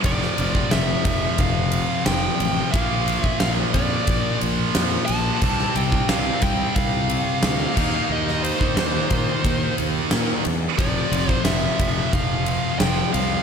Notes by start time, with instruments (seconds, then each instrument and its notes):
0.03 fingered electric bass F1, distorted electric guitar F2 C3 F3, lead electric guitar D5, kick, ride
0.22 snare
0.38 fingered electric bass F1, ride
0.55 kick
0.71 fingered electric bass F1, lead electric guitar E5, snare, ride
1.05 fingered electric bass F1, kick, ride
1.38 fingered electric bass F1, lead electric guitar F5, kick, ride
1.72 ride
2.06 fingered electric bass F1, lead electric guitar G5, snare, ride
2.40 fingered electric bass A1, ride
2.72 fingered electric bass A#1, distorted electric guitar A#2 F3 A#3, lead electric guitar F5, kick, ride
3.08 ride
3.21 lead electric guitar E5, kick
3.40 fingered electric bass A#1, lead electric guitar F5, snare, ride
3.74 fingered electric bass F2, lead electric guitar D5, kick, ride
4.07 fingered electric bass A#1, kick, ride
4.41 fingered electric bass A#1, ride
4.75 fingered electric bass F2, snare, ride
5.06 fingered electric bass A#1, lead electric guitar A5, ride
5.41 fingered electric bass C2, distorted electric guitar C3 G3, kick, crash
5.46 distorted electric guitar C4
5.59 snare
5.76 fingered electric bass C2, lead electric guitar G5, ride
5.92 kick
6.09 fingered electric bass C2, lead electric guitar F5, snare, ride
6.42 fingered electric bass C2, lead electric guitar G5, kick, ride
6.76 fingered electric bass C2, lead electric guitar F5, kick, ride
7.10 ride
7.43 fingered electric bass D2, snare, ride
7.76 fingered electric bass D#2, distorted electric guitar D#3 A#3 D#4, kick, crash
8.10 fingered electric bass D#2, lead electric guitar D#5
8.28 snare
8.43 lead electric guitar C5, ride
8.61 kick
8.76 fingered electric bass D#2, snare, ride
9.10 fingered electric bass A#2, kick, ride
9.45 fingered electric bass D#2, kick, ride
9.78 fingered electric bass D#2, ride
10.11 fingered electric bass A#2, snare, ride
10.45 fingered electric bass E2, ride
10.78 fingered electric bass F1, distorted electric guitar F2 C3 F3, lead electric guitar D5, kick, ride
11.12 fingered electric bass F1, ride
11.29 lead electric guitar C5, kick
11.44 fingered electric bass F1, lead electric guitar E5, snare, ride
11.79 fingered electric bass F1, kick, ride
12.13 fingered electric bass F1, lead electric guitar F5, kick, ride
12.46 ride
12.79 fingered electric bass F1, lead electric guitar G5, snare, ride
13.13 fingered electric bass C2, lead electric guitar F5, ride